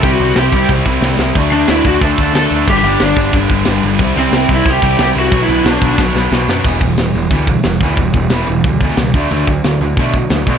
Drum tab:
CC |xxxxxx--|xxxxxxxx|xxxxxxxx|xxxxxxxx|
HH |--------|--------|--------|--------|
SD |--o---oo|--o---o-|--o---o-|--o---o-|
BD |o--ooo--|o--ooo--|o--ooo--|o--ooo--|

CC |xxxx----|x-------|--------|--------|
HH |--------|-ooooooo|oooooooo|oooooooo|
SD |--o-oooo|--o---o-|--o---o-|--o---o-|
BD |o--oo---|oo--oo-o|oo--oo-o|-o--oo-o|